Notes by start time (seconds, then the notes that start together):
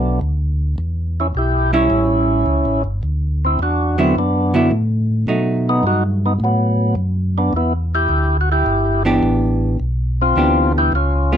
Already playing: B1 F#3 A3 B3 D4
0.21 D2
0.78 E2
1.20 C#4 E4
1.35 B1 E4 G4
1.73 G3 C#4 E4
1.90 A1
2.46 C#2
2.65 A1
2.84 G1
3.03 D2
3.45 C4 E4
3.59 E2 D4 F#4
3.98 D3 F#3 B3 C4 E4
4.15 F#2 B3 D4
4.54 D3 F#3 B3 E4
4.71 A2
5.27 B2 F#3 A3 D#4
5.69 B3 D#4
5.83 G2 D#4 F#4
6.26 B3 D#4
6.40 A2 F#3
6.45 B3
6.95 F#2
7.38 B3 D4
7.53 E2 E4
7.57 B3
7.95 E4 G4
8.09 D2
8.41 F#4
8.52 E4 G4
8.66 G1
9.05 E3 B3 D4 G4
9.23 A1
9.80 B1
10.22 C4 F4
10.36 D2 E3 B3 D4 G4
10.78 E4 G4
10.92 C#2 C#4 F4
11.32 G#3 B3 F4